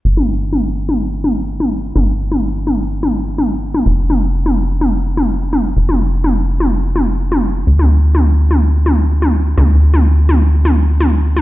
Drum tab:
T2 |-o--o--o--o--o--|o--o--o--o--o--o|--o--o--o--o--o-|-o--o--o--o--o--|

T2 |-o--o--o--o--o--|o--o--o--o--o--o|